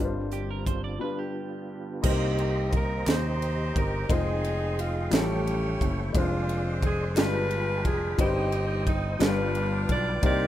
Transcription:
Already playing: G1 G2 D3 G3 C4 D4 F4 A#4 D#5
0.04 C5
0.32 G4, closed hi-hat
0.51 A#4
0.66 C5, kick, closed hi-hat
0.84 D5
0.99 G2 G3 B3 D4 F4 B4
1.19 G4
2.01 C2 C3 A#3 D#4 G4 C5 D#5 A#5, kick, crash
2.06 A#3 G4
2.38 ride
2.73 A#4, kick, ride
3.07 D#2 D#4 G4 C5, snare, clap, ride
3.42 ride
3.76 G1 A#4, kick, ride
4.09 F1 G#3 C4 D#4 F4 G#4 C5 C6, kick, ride
4.44 ride
4.79 F4, ride
5.11 A1 A2 F3 G3 C#4 E4 G4 G#4 A4 G5 C#6, snare, clap, ride
5.19 A4
5.47 ride
5.81 F#1, kick, ride
6.13 F1 G#3 C4 D4 F4 G#4 C5 D5 C6, kick, ride
6.49 ride
6.82 G#4, kick, ride
7.16 G1 G2 G3 G#3 D4 F4 G#4 B4 G5 B5, snare, clap, ride
7.51 ride
7.84 F1 G#4, kick, ride
8.18 G1 G2 G3 C4 D#4 G4 B4 C5 D#5 D#6, kick, ride
8.27 C5
8.52 ride
8.87 D#4, kick, ride
9.19 G1 G2 G3 D4 F4 B4 F5 D6, snare, clap, ride
9.55 ride
9.89 B1 D5, kick, ride
10.21 C2 C3 A#3 D#4 G4 A#4 C5 D5 C6, kick, ride

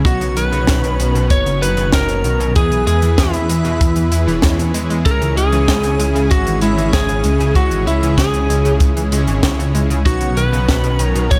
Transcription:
0.05 B1 B2 D#3 B3 C#4 D#4 F#4 C#5 F#5, kick, closed hi-hat
0.21 B1 C#3, closed hi-hat
0.37 B1 D#3 B4 B5, closed hi-hat
0.52 B1 C#3 B3 D#4 F#4 C#5, closed hi-hat
0.67 B1 B2, kick, snare, closed hi-hat
0.84 B1 B2, closed hi-hat
0.99 B1 D#3, closed hi-hat
1.15 B1 B2, closed hi-hat
1.30 F#1 B2 C#5 C#6, kick, closed hi-hat
1.46 F#1 C#3, closed hi-hat
1.62 F#1 D#3 B3 D#4 F#4 B4 C#5 B5, closed hi-hat
1.77 F#1 C#3, closed hi-hat
1.92 F#1 B2 A#4 A#5, kick, snare, closed hi-hat
2.09 F#1 B2, closed hi-hat
2.24 B1 D#3, closed hi-hat
2.40 B1 B2, closed hi-hat
2.56 E2 B2 E3 B3 E4 G#4 B4 E5 G#5, kick, closed hi-hat
2.71 B1 E3, closed hi-hat
2.87 E2 G#3 G#4 G#5, closed hi-hat
3.02 E2 E3 B3 E4 G#4 E5, closed hi-hat
3.18 E2 B2 E4 E5, kick, snare, closed hi-hat
3.33 E2 B2, closed hi-hat
3.49 E2 G#3, closed hi-hat
3.65 E2 B2, closed hi-hat
3.81 E2 B2, kick, closed hi-hat
3.96 E2 E3, closed hi-hat
4.12 E2 E4, closed hi-hat
4.27 E1 E3 B3 E4 G#4 C#5, closed hi-hat
4.42 E2 G#3 B3 E4 G#4 C#5, kick, snare, closed hi-hat
4.59 E2 B2, closed hi-hat
4.74 E2 G#3, closed hi-hat
4.90 E2 G#3, closed hi-hat
5.05 C#2 C#3 G#3 C#4 E4 A#4 C#5 A#5, kick, closed hi-hat
5.21 C#2 E3, closed hi-hat
5.37 C#2 G#3 G#4 G#5, closed hi-hat
5.52 C#2 E3 G#3 C#4 E4 C#5, closed hi-hat
5.68 C#2 C#3, kick, snare, closed hi-hat
5.83 C#2 C#3, closed hi-hat
5.99 C#2 G#3, closed hi-hat
6.15 C#2 C#3, closed hi-hat
6.31 G#1 C#3 F#4 F#5, kick, closed hi-hat
6.46 G#1 E3, closed hi-hat
6.61 G#1 G#3 C#4 E4 C#5 E5, closed hi-hat
6.78 G#1 E3, closed hi-hat
6.93 G#1 C#3 G#4 G#5, kick, snare, closed hi-hat
7.09 G#1 C#3, closed hi-hat
7.24 C#2 G#3, closed hi-hat
7.40 C#2 C#3, closed hi-hat
7.55 C#2 C#3 G#3 C#4 E4 F#4 C#5 F#5, kick, closed hi-hat
7.71 G#1 E3, closed hi-hat
7.87 C#2 G#3 E4 E5, closed hi-hat
8.03 C#2 E3 G#3 C#4 E4 C#5, closed hi-hat
8.18 C#2 C#3 G#4 G#5, kick, snare, closed hi-hat
8.34 C#2 C#3, closed hi-hat
8.50 C#2 G#3, closed hi-hat
8.65 C#2 C#3, closed hi-hat
8.80 C#2 C#3, kick, closed hi-hat
8.96 C#2 E3, closed hi-hat
9.12 C#2 G#3 C#4 E4 C#5, closed hi-hat
9.27 G#1 E3, closed hi-hat
9.43 C#2 C#3, kick, snare, closed hi-hat
9.59 C#2 C#3, closed hi-hat
9.75 C#2 G#3, closed hi-hat
9.90 C#2 C#3, closed hi-hat
10.06 B1 B2 D#3 B3 C#4 D#4 F#4 C#5 F#5, kick, closed hi-hat
10.21 B1 C#3, closed hi-hat
10.37 B1 D#3 B4 B5, closed hi-hat
10.53 B1 C#3 B3 D#4 F#4 C#5, closed hi-hat
10.68 B1 B2, kick, snare, closed hi-hat
10.84 B1 B2, closed hi-hat
10.99 B1 D#3 A#4 A#5, closed hi-hat
11.15 B1 B2, closed hi-hat
11.31 F#1 B2 C#5 C#6, kick, closed hi-hat

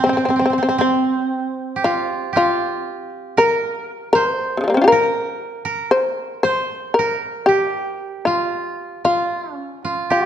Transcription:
Already playing: F4 G4
0.04 C4
0.09 C4
0.17 C4
0.25 C4
0.30 C4
0.36 C4
0.41 C4
0.46 C4
0.50 C4
0.58 C4
0.63 C4
0.69 C4
0.78 C4
1.76 G4
1.84 F4
2.33 F4 G4
2.37 F4
3.37 A#4
4.13 A#4 C5
4.34 C5
4.57 C3 C#3
4.64 F3 G3
4.70 A#3
4.74 C4 C#4
4.82 F4 G4
4.88 A#4
4.92 A#4
5.65 A#4
5.91 C5
6.43 C5
6.94 A#4
6.99 A#4
7.46 G4
7.94 F4
8.25 F4
9.05 F4
9.56 C#4
9.85 F4
10.10 G4

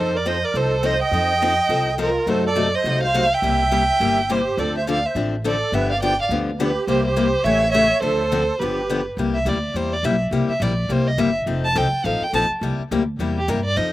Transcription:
Already playing: F2 F3 C4 D#4 A4
0.00 C5
0.14 A#4 D5
0.25 F3 C4 D#4 A4 C5 D#5
0.44 A#4 D5
0.54 C2 F3 C4 D#4 A4 C5
0.83 F3 C4 D#4 A4 C5 D#5
1.00 D#5 G5
1.11 F2 F3 C4 D#4 A4
1.42 F3 C4 D#4 A4
1.69 C2 F3 C4 D#4 A4
1.98 F3 C4 D#4 F4 A4 A#4
2.27 F#2 C3 F#3 A3 D#4 F#4 A4 C5
2.46 A4 D5
2.56 C3 F#3 A3 D#4 F#4
2.75 C5 D#5
2.84 C2 C3 F#3 A3 D#4 F#4
3.03 C5 F5
3.14 C3 F#3 A3 D#4 F#4
3.33 E5 G5
3.42 C2 C3 G3 A#3 E4 G4
3.71 C3 G3 A#3 E4 G4
4.00 G1 C3 G3 A#3 E4 G4
4.29 C3 G3 A#3 E4 G4 C5
4.57 D2 D3 F3 C4 D4 A4 D5
4.76 C5 E5
4.87 D3 F3 C4 D4 A4 D5 F5
5.05 C5 E5
5.15 A1 D3 F3 C4 D4 A4
5.44 D3 F3 C4 D4 A4 D5
5.72 G1 D3 F3 B3 D4 G4 B4 E5
5.90 D5 F5
6.02 D3 F3 B3 D4 G4 D5 G5
6.20 D5 F5
6.29 D2 D3 F3 B3 D4 G4
6.59 D3 F3 B3 D4 G4 B4
6.87 C2 C3 G3 A#3 E4 G4 C5
7.05 G4 C5
7.16 C3 G3 A#3 E4 G4
7.43 A1 C#3 E3 A3 C#4 G4 C#5 E5
7.72 C#3 E3 A3 C#4 G4 C#5 E5
8.00 D2 D3 F3 C4 D4 A4 C5
8.32 D3 F3 C4 D4 A4
8.59 G1 D3 F3 B3 D4 G4 B4
8.90 D3 F3 B3 D4 G4
9.17 C2 C3 G3 A#3 E4 G4
9.34 E5
9.45 D2 C3 G3 A#3 E4 G4 D5
9.74 E2 C3 G3 A#3 E4 G4 C5
9.93 D5
10.03 B1 C3 G3 A#3 E4 G4 E5
10.31 C2 C3 G3 A#3 E4 G4
10.48 E5, muted upright bass stroke
10.60 A#1 C3 G3 A#3 E4 G4 D5
10.89 C2 C3 G3 A#3 E4 G4 C5
11.07 D#5
11.18 G1 C3 G3 A#3 E4 G4 E5
11.46 F1 F3 C4 D#4 A4
11.65 A5
11.75 C2 F3 C4 D#4 A4 G5
11.93 muted upright bass stroke
12.04 A1 F3 C4 D#4 A4 F5
12.21 G5, muted upright bass stroke
12.33 A#1 F3 C4 D#4 A4 A5
12.50 muted upright bass stroke
12.61 C2 C3 G3 A#3 E4 G4
12.79 muted upright bass stroke
12.91 D2 C3 G3 A#3 E4 G4
13.19 E2 C3 G3 A#3 E4 G4
13.37 G4
13.48 G2 C3 G3 A#3 E4 G4 A#4
13.65 D5
13.76 F2 F3 C4 D#4 A4 D#5

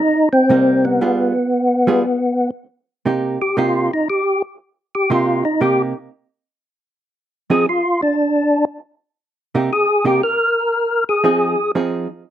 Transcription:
Already playing: D#4
0.33 C4
0.49 C3 G3 A#3 D#4
0.85 B3
1.01 G3 B3 F4 G#4
1.87 G3 B3 F4 G#4
3.06 C3 A#3 D#4 G4
3.42 G4
3.57 C3 A#3 D#4 F4 G4
3.94 D#4
4.10 G4
4.95 G4
5.10 C3 A#3 D#4 F4 G4
5.45 D#4
5.61 C3 A#3 D#4 G4
7.50 F3 C4 D#4 G#4
7.69 F4
8.02 D4
9.55 C3 A#3 D#4 G4
9.73 G#4
10.05 C3 A#3 D#4 G4
10.23 A#4
11.09 G#4
11.24 F3 C4 D#4 G#4
11.75 F3 C4 D#4 G#4

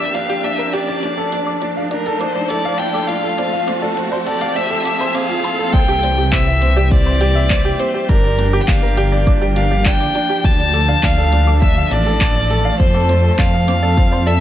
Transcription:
Already playing: G1 F3 A#3 D4 G4 A#4 E5, riser
0.00 D5
0.14 D4 D5 F5, closed hi-hat
0.29 G4, closed hi-hat
0.44 D4 D5 E5, closed hi-hat
0.59 A#4
0.73 G4 D5 D6, closed hi-hat
0.88 D5
1.03 D2 D4, closed hi-hat
1.17 A3 A4 D5
1.32 D4, closed hi-hat
1.47 A4 D6
1.57 A4
1.62 D2 D4 D5, closed hi-hat
1.77 F5
1.91 D4 A#4 D5, closed hi-hat
2.06 A4, closed hi-hat
2.20 D4 C5 D6, closed hi-hat
2.35 D5
2.49 A1 A4 D5, closed hi-hat
2.65 D5 F5, closed hi-hat
2.78 D4 G5, closed hi-hat
2.94 A4 D6
3.07 D4 D5 F5, closed hi-hat
3.24 A4
3.38 F2 C4 D5, closed hi-hat
3.53 F5
3.67 C4 D6, closed hi-hat
3.79 C4 A4 D5
3.97 F2 C4, closed hi-hat
4.12 C5 D5
4.26 A4 D5, closed hi-hat
4.41 F5 D6, closed hi-hat
4.56 C4 D5 E5, closed hi-hat
4.71 A4
4.85 A4 E5 D6, closed hi-hat
5.00 C5, closed hi-hat
5.14 C4 F5 D6, closed hi-hat
5.29 F4 A5
5.44 C2 A5 C6, closed hi-hat
5.59 A4 A5
5.73 C2 E3 C4 D5 G5, kick
5.88 G3 G4
6.03 C4 D5, closed hi-hat
6.18 G4
6.32 C4 G4 E5 D6, kick, clap
6.47 D5 E5
6.62 C4, closed hi-hat
6.77 G4 D5
6.91 C4 D5, kick
7.06 C5 D6
7.21 G4 D5, closed hi-hat
7.35 E5
7.50 C4 D5, kick, clap
7.65 G4
7.79 C4 C5 D6, closed hi-hat
7.94 G4 D5
8.09 G1 F3 D4 A#4, kick
8.19 D4
8.24 D5
8.34 A#3
8.38 D4, closed hi-hat
8.53 G4 D6
8.61 G5
8.67 G1 D4 D5 F5, kick, clap
8.83 A#4
8.97 G4 D5, closed hi-hat
9.12 D5
9.27 D4 D6, kick
9.41 G4 D5
9.56 D4 F5, closed hi-hat
9.71 G4 D5
9.85 D4 G5, kick, clap
10.00 D5 D6
10.15 D4 D5, closed hi-hat
10.29 G4
10.44 D2 D4 D5 A5, kick
10.59 D5
10.73 A3 A4 D6, closed hi-hat
10.88 D5 F5
10.96 A4
11.03 D2 D4 F5, kick, clap
11.18 A4 D5
11.33 D4, closed hi-hat
11.47 A4 D6
11.62 D4 D5 E5, kick
11.77 F5
11.91 A1 D4 D5, closed hi-hat
12.07 A4
12.21 D4 D6, kick, clap
12.36 D5
12.50 A4, closed hi-hat
12.65 D5 F5
12.80 F2 C4 C5, kick
12.94 A4 D6
13.09 C4 D5, closed hi-hat
13.24 A4
13.30 C4
13.38 F2 C4 D5 F5, kick, clap
13.54 F5
13.68 C4 D6, closed hi-hat
13.83 A4 D5
13.97 C4, kick
14.12 C5 D5
14.26 A4 D5 E5, closed hi-hat

